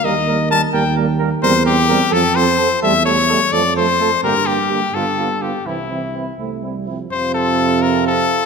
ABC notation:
X:1
M:6/8
L:1/8
Q:3/8=85
K:Eblyd
V:1 name="Trumpet"
e2 a g z2 | [K:F] c G2 A c2 | e ^c2 d =c2 | B G2 A2 G |
E3 z3 | c A2 B A2 |]
V:2 name="Flugelhorn"
B B B B B B | [K:F] B B B A A A | A A A A A A | G G G F F F |
E E E E E E | F6 |]
V:3 name="French horn"
B, B, B, B, B, B, | [K:F] C C C C C C | A, A, A, A, A, A, | B, B, B, =B, B, B, |
C C C C C C | C6 |]
V:4 name="Euphonium" clef=bass
G, G, G, G, G, G, | [K:F] G, G, G, F, F, F, | G, G, G, F, F, F, | D, D, D, D, D, D, |
E, E, E, A, G, F, | C,6 |]
V:5 name="Tuba" clef=bass
E,,3 E,,3 | [K:F] E,,3 F,,3 | E,,3 F,,3 | G,,3 G,,3 |
C,,3 C,,3 | F,,6 |]